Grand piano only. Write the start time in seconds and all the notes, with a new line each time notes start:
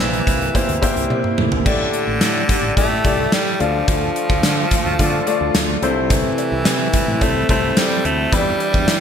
Already playing: C3 A#3 E4 G4 C5
0.54 A#3 E4 G4 C5
0.82 A#3 E4 G4 C5
1.65 A2 A3 E4 G4 D5
2.76 A3 E4 G4 D5
3.04 A3 E4 G4 D5
3.60 D3 A3 D4 F4 D5
4.99 A3 D4 F4 D5
5.27 A3 D4 F4 D5
5.82 C3 A3 C4 E4 C5
7.21 A3 C4 E4 C5
7.49 A3 C4 E4 C5
8.32 E3 F3 D4 E4 B4
8.39 G3